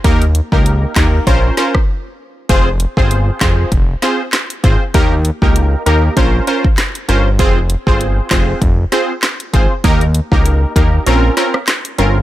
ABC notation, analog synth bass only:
X:1
M:4/4
L:1/16
Q:"Swing 16ths" 1/4=98
K:Fm
V:1 name="Analog synth bass" clef=bass
E,,3 D,,3 E,,2 B,,,2 z6 | F,,,3 G,,,3 F,,,2 F,,,2 z4 A,,, z | E,,3 D,,3 E,,2 B,,,2 z4 G,,,2 | F,,,3 G,,,3 F,,,2 F,,,2 z4 A,,, z |
E,,3 D,,3 E,,2 B,,,2 z4 G,,,2 |]